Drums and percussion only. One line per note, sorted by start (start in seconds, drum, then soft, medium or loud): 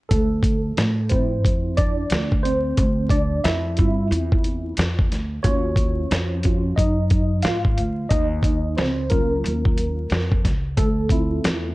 0.11 kick loud
0.11 closed hi-hat medium
0.43 kick medium
0.43 closed hi-hat medium
0.78 snare medium
0.78 closed hi-hat medium
1.10 kick medium
1.10 closed hi-hat medium
1.44 kick medium
1.44 closed hi-hat medium
1.77 kick medium
1.77 closed hi-hat medium
2.10 snare loud
2.10 closed hi-hat medium
2.32 kick medium
2.45 closed hi-hat medium
2.77 kick loud
2.77 closed hi-hat medium
3.09 kick medium
3.09 closed hi-hat medium
3.44 snare medium
3.44 closed hi-hat medium
3.77 kick medium
3.77 closed hi-hat medium
4.12 closed hi-hat medium
4.32 kick loud
4.44 closed hi-hat medium
4.77 snare loud
4.77 closed hi-hat medium
4.99 kick medium
5.12 snare soft
5.12 closed hi-hat medium
5.44 kick loud
5.44 closed hi-hat medium
5.76 kick loud
5.76 closed hi-hat medium
6.11 snare loud
6.11 closed hi-hat medium
6.43 kick medium
6.43 closed hi-hat medium
6.78 kick medium
6.78 closed hi-hat medium
7.10 kick medium
7.10 closed hi-hat medium
7.43 snare loud
7.43 closed hi-hat medium
7.65 kick medium
7.78 closed hi-hat medium
8.10 kick loud
8.10 closed hi-hat medium
8.43 kick medium
8.43 closed hi-hat medium
8.77 snare loud
8.77 closed hi-hat medium
9.10 kick medium
9.10 closed hi-hat medium
9.46 closed hi-hat medium
9.65 kick loud
9.77 closed hi-hat medium
10.10 snare loud
10.10 closed hi-hat medium
10.32 kick medium
10.45 kick medium
10.45 snare soft
10.45 closed hi-hat medium
10.77 kick loud
10.77 closed hi-hat medium
11.09 kick medium
11.09 closed hi-hat medium
11.44 snare loud
11.44 closed hi-hat medium